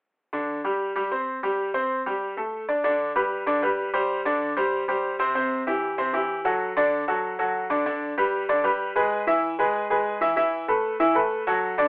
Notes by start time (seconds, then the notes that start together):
0.33 D3 D4
0.64 G3 G4
0.96 G3 G4
1.12 C4 C5
1.43 G3 G4
1.74 C4 C5
2.06 G3 G4
2.37 A3 A4
2.69 D4 D5
2.84 D3 D4 D5
3.16 G3 G4 B4
3.47 D3 D4 D5
3.62 G3 G4 B4
3.94 G3 G4 C5
4.25 D3 D4 D5
4.57 G3 G4 C5
4.88 G3 G4 C5
5.19 C3 C4 C5
5.35 C3 C4 C5
5.67 E3 E4 G4
5.98 C3 C4 C5
6.13 E3 E4 G4
6.45 F#3 F#4 A4
6.77 D3 D4 D5
7.08 F#3 F#4 A4
7.39 F#3 F#4 A4
7.70 D3 D4 D5
7.86 D3 D4 D5
8.18 G3 G4 B4
8.49 D3 D4 D5
8.64 G3 G4 B4
8.96 G#3 G#4 B4
9.27 E3 E4 E5
9.59 G#3 G#4 B4
9.90 G#3 G#4 B4
10.21 E3 E4 E5
10.36 E3 E4 E5
10.68 A3 A4 B4
11.00 E3 E4 E5
11.15 A3 A4 B4
11.47 F#3 F#4 A4
11.78 D3 D4 D5